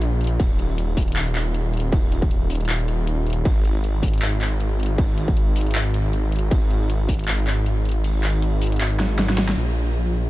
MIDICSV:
0, 0, Header, 1, 3, 480
1, 0, Start_track
1, 0, Tempo, 382166
1, 500, Time_signature, 4, 2, 24, 8
1, 12934, End_track
2, 0, Start_track
2, 0, Title_t, "Detuned saw bass"
2, 0, Program_c, 0, 39
2, 0, Note_on_c, 0, 34, 92
2, 477, Note_off_c, 0, 34, 0
2, 499, Note_on_c, 0, 27, 91
2, 4318, Note_off_c, 0, 27, 0
2, 4337, Note_on_c, 0, 32, 86
2, 11997, Note_off_c, 0, 32, 0
2, 12020, Note_on_c, 0, 34, 82
2, 12934, Note_off_c, 0, 34, 0
2, 12934, End_track
3, 0, Start_track
3, 0, Title_t, "Drums"
3, 20, Note_on_c, 9, 42, 84
3, 145, Note_off_c, 9, 42, 0
3, 261, Note_on_c, 9, 42, 54
3, 305, Note_off_c, 9, 42, 0
3, 305, Note_on_c, 9, 42, 72
3, 341, Note_off_c, 9, 42, 0
3, 341, Note_on_c, 9, 42, 92
3, 466, Note_off_c, 9, 42, 0
3, 498, Note_on_c, 9, 36, 123
3, 501, Note_on_c, 9, 42, 86
3, 501, Note_on_c, 9, 49, 46
3, 624, Note_off_c, 9, 36, 0
3, 627, Note_off_c, 9, 42, 0
3, 627, Note_off_c, 9, 49, 0
3, 741, Note_on_c, 9, 42, 67
3, 866, Note_off_c, 9, 42, 0
3, 981, Note_on_c, 9, 42, 84
3, 1107, Note_off_c, 9, 42, 0
3, 1218, Note_on_c, 9, 36, 63
3, 1220, Note_on_c, 9, 46, 93
3, 1288, Note_on_c, 9, 42, 71
3, 1343, Note_off_c, 9, 36, 0
3, 1346, Note_off_c, 9, 46, 0
3, 1354, Note_off_c, 9, 42, 0
3, 1354, Note_on_c, 9, 42, 52
3, 1407, Note_off_c, 9, 42, 0
3, 1407, Note_on_c, 9, 42, 69
3, 1458, Note_off_c, 9, 42, 0
3, 1458, Note_on_c, 9, 39, 124
3, 1458, Note_on_c, 9, 42, 83
3, 1584, Note_off_c, 9, 39, 0
3, 1584, Note_off_c, 9, 42, 0
3, 1700, Note_on_c, 9, 39, 71
3, 1700, Note_on_c, 9, 42, 75
3, 1826, Note_off_c, 9, 39, 0
3, 1826, Note_off_c, 9, 42, 0
3, 1939, Note_on_c, 9, 42, 82
3, 2065, Note_off_c, 9, 42, 0
3, 2179, Note_on_c, 9, 42, 55
3, 2224, Note_off_c, 9, 42, 0
3, 2224, Note_on_c, 9, 42, 72
3, 2260, Note_off_c, 9, 42, 0
3, 2260, Note_on_c, 9, 42, 89
3, 2386, Note_off_c, 9, 42, 0
3, 2417, Note_on_c, 9, 36, 127
3, 2421, Note_on_c, 9, 42, 84
3, 2421, Note_on_c, 9, 49, 45
3, 2543, Note_off_c, 9, 36, 0
3, 2546, Note_off_c, 9, 42, 0
3, 2546, Note_off_c, 9, 49, 0
3, 2662, Note_on_c, 9, 42, 65
3, 2788, Note_off_c, 9, 42, 0
3, 2790, Note_on_c, 9, 36, 119
3, 2900, Note_on_c, 9, 42, 79
3, 2916, Note_off_c, 9, 36, 0
3, 3026, Note_off_c, 9, 42, 0
3, 3140, Note_on_c, 9, 46, 84
3, 3207, Note_on_c, 9, 42, 68
3, 3266, Note_off_c, 9, 46, 0
3, 3273, Note_off_c, 9, 42, 0
3, 3273, Note_on_c, 9, 42, 48
3, 3327, Note_off_c, 9, 42, 0
3, 3327, Note_on_c, 9, 42, 67
3, 3379, Note_off_c, 9, 42, 0
3, 3379, Note_on_c, 9, 39, 117
3, 3379, Note_on_c, 9, 42, 77
3, 3505, Note_off_c, 9, 39, 0
3, 3505, Note_off_c, 9, 42, 0
3, 3619, Note_on_c, 9, 42, 74
3, 3745, Note_off_c, 9, 42, 0
3, 3860, Note_on_c, 9, 42, 76
3, 3986, Note_off_c, 9, 42, 0
3, 4101, Note_on_c, 9, 42, 53
3, 4145, Note_off_c, 9, 42, 0
3, 4145, Note_on_c, 9, 42, 67
3, 4180, Note_off_c, 9, 42, 0
3, 4180, Note_on_c, 9, 42, 84
3, 4306, Note_off_c, 9, 42, 0
3, 4337, Note_on_c, 9, 36, 126
3, 4341, Note_on_c, 9, 42, 76
3, 4341, Note_on_c, 9, 49, 49
3, 4463, Note_off_c, 9, 36, 0
3, 4467, Note_off_c, 9, 42, 0
3, 4467, Note_off_c, 9, 49, 0
3, 4581, Note_on_c, 9, 42, 62
3, 4706, Note_off_c, 9, 42, 0
3, 4821, Note_on_c, 9, 42, 77
3, 4946, Note_off_c, 9, 42, 0
3, 5058, Note_on_c, 9, 36, 60
3, 5061, Note_on_c, 9, 46, 90
3, 5126, Note_on_c, 9, 42, 64
3, 5184, Note_off_c, 9, 36, 0
3, 5186, Note_off_c, 9, 46, 0
3, 5194, Note_off_c, 9, 42, 0
3, 5194, Note_on_c, 9, 42, 50
3, 5247, Note_off_c, 9, 42, 0
3, 5247, Note_on_c, 9, 42, 64
3, 5301, Note_off_c, 9, 42, 0
3, 5301, Note_on_c, 9, 39, 118
3, 5301, Note_on_c, 9, 42, 76
3, 5426, Note_off_c, 9, 39, 0
3, 5426, Note_off_c, 9, 42, 0
3, 5542, Note_on_c, 9, 39, 70
3, 5542, Note_on_c, 9, 42, 69
3, 5668, Note_off_c, 9, 39, 0
3, 5668, Note_off_c, 9, 42, 0
3, 5782, Note_on_c, 9, 42, 74
3, 5907, Note_off_c, 9, 42, 0
3, 6024, Note_on_c, 9, 42, 49
3, 6066, Note_off_c, 9, 42, 0
3, 6066, Note_on_c, 9, 42, 68
3, 6103, Note_off_c, 9, 42, 0
3, 6103, Note_on_c, 9, 42, 84
3, 6228, Note_off_c, 9, 42, 0
3, 6259, Note_on_c, 9, 36, 117
3, 6262, Note_on_c, 9, 42, 75
3, 6262, Note_on_c, 9, 49, 51
3, 6384, Note_off_c, 9, 36, 0
3, 6388, Note_off_c, 9, 42, 0
3, 6388, Note_off_c, 9, 49, 0
3, 6501, Note_on_c, 9, 42, 62
3, 6627, Note_off_c, 9, 42, 0
3, 6632, Note_on_c, 9, 36, 111
3, 6742, Note_on_c, 9, 42, 80
3, 6758, Note_off_c, 9, 36, 0
3, 6868, Note_off_c, 9, 42, 0
3, 6981, Note_on_c, 9, 46, 94
3, 7049, Note_on_c, 9, 42, 60
3, 7107, Note_off_c, 9, 46, 0
3, 7115, Note_off_c, 9, 42, 0
3, 7115, Note_on_c, 9, 42, 48
3, 7169, Note_off_c, 9, 42, 0
3, 7169, Note_on_c, 9, 42, 61
3, 7223, Note_off_c, 9, 42, 0
3, 7223, Note_on_c, 9, 39, 118
3, 7223, Note_on_c, 9, 42, 77
3, 7348, Note_off_c, 9, 39, 0
3, 7348, Note_off_c, 9, 42, 0
3, 7463, Note_on_c, 9, 42, 72
3, 7588, Note_off_c, 9, 42, 0
3, 7702, Note_on_c, 9, 42, 81
3, 7828, Note_off_c, 9, 42, 0
3, 7941, Note_on_c, 9, 42, 49
3, 7985, Note_off_c, 9, 42, 0
3, 7985, Note_on_c, 9, 42, 66
3, 8021, Note_off_c, 9, 42, 0
3, 8021, Note_on_c, 9, 42, 81
3, 8147, Note_off_c, 9, 42, 0
3, 8180, Note_on_c, 9, 36, 116
3, 8183, Note_on_c, 9, 42, 78
3, 8183, Note_on_c, 9, 49, 51
3, 8306, Note_off_c, 9, 36, 0
3, 8308, Note_off_c, 9, 42, 0
3, 8308, Note_off_c, 9, 49, 0
3, 8423, Note_on_c, 9, 42, 62
3, 8548, Note_off_c, 9, 42, 0
3, 8663, Note_on_c, 9, 42, 80
3, 8788, Note_off_c, 9, 42, 0
3, 8899, Note_on_c, 9, 36, 57
3, 8903, Note_on_c, 9, 46, 91
3, 8968, Note_on_c, 9, 42, 61
3, 9025, Note_off_c, 9, 36, 0
3, 9028, Note_off_c, 9, 46, 0
3, 9035, Note_off_c, 9, 42, 0
3, 9035, Note_on_c, 9, 42, 50
3, 9090, Note_off_c, 9, 42, 0
3, 9090, Note_on_c, 9, 42, 67
3, 9143, Note_off_c, 9, 42, 0
3, 9143, Note_on_c, 9, 39, 118
3, 9143, Note_on_c, 9, 42, 81
3, 9269, Note_off_c, 9, 39, 0
3, 9269, Note_off_c, 9, 42, 0
3, 9383, Note_on_c, 9, 39, 67
3, 9383, Note_on_c, 9, 42, 72
3, 9509, Note_off_c, 9, 39, 0
3, 9509, Note_off_c, 9, 42, 0
3, 9623, Note_on_c, 9, 42, 80
3, 9748, Note_off_c, 9, 42, 0
3, 9864, Note_on_c, 9, 42, 51
3, 9908, Note_off_c, 9, 42, 0
3, 9908, Note_on_c, 9, 42, 69
3, 9942, Note_off_c, 9, 42, 0
3, 9942, Note_on_c, 9, 42, 84
3, 10068, Note_off_c, 9, 42, 0
3, 10102, Note_on_c, 9, 42, 85
3, 10102, Note_on_c, 9, 49, 48
3, 10227, Note_off_c, 9, 42, 0
3, 10227, Note_off_c, 9, 49, 0
3, 10341, Note_on_c, 9, 39, 57
3, 10341, Note_on_c, 9, 42, 64
3, 10467, Note_off_c, 9, 39, 0
3, 10467, Note_off_c, 9, 42, 0
3, 10580, Note_on_c, 9, 42, 87
3, 10706, Note_off_c, 9, 42, 0
3, 10821, Note_on_c, 9, 46, 99
3, 10889, Note_on_c, 9, 42, 67
3, 10947, Note_off_c, 9, 46, 0
3, 10955, Note_off_c, 9, 42, 0
3, 10955, Note_on_c, 9, 42, 51
3, 11007, Note_off_c, 9, 42, 0
3, 11007, Note_on_c, 9, 42, 67
3, 11062, Note_off_c, 9, 42, 0
3, 11062, Note_on_c, 9, 39, 119
3, 11062, Note_on_c, 9, 42, 86
3, 11187, Note_off_c, 9, 39, 0
3, 11187, Note_off_c, 9, 42, 0
3, 11302, Note_on_c, 9, 38, 69
3, 11302, Note_on_c, 9, 42, 73
3, 11427, Note_off_c, 9, 38, 0
3, 11427, Note_off_c, 9, 42, 0
3, 11541, Note_on_c, 9, 38, 77
3, 11541, Note_on_c, 9, 42, 82
3, 11667, Note_off_c, 9, 38, 0
3, 11667, Note_off_c, 9, 42, 0
3, 11676, Note_on_c, 9, 38, 76
3, 11783, Note_off_c, 9, 38, 0
3, 11783, Note_on_c, 9, 38, 106
3, 11783, Note_on_c, 9, 42, 53
3, 11827, Note_off_c, 9, 42, 0
3, 11827, Note_on_c, 9, 42, 72
3, 11862, Note_off_c, 9, 42, 0
3, 11862, Note_on_c, 9, 42, 91
3, 11909, Note_off_c, 9, 38, 0
3, 11916, Note_on_c, 9, 38, 92
3, 11988, Note_off_c, 9, 42, 0
3, 12041, Note_off_c, 9, 38, 0
3, 12934, End_track
0, 0, End_of_file